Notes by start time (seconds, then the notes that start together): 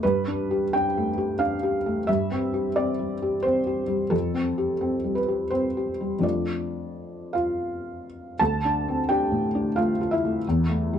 0.03 G2 B4
0.28 D4
0.51 G4
0.73 D4 G5
0.97 A3
1.18 G4
1.39 D4 F5
1.63 G4
1.86 A3
2.07 G2 E5
2.31 C4
2.54 G4
2.76 C4 D5
2.99 G3
3.22 G4
3.43 C4 C5
3.67 G4
3.88 G3
4.10 F2 A4
4.34 C4
4.58 G4
4.81 C4
5.04 G3
5.15 B4
5.28 G4
5.50 C4 C5
5.77 G4
6.01 G3
6.19 F2 A3 D4 F4
6.23 D5
7.33 F4 F5
8.39 D2 A4 A5
8.65 D4
8.88 C4
9.09 D4 G4 G5
9.31 A2
9.55 D4
9.76 A3 F4 F5
10.01 F4
10.11 E4 E5
10.25 A3
10.48 E2
10.69 A3
10.93 G3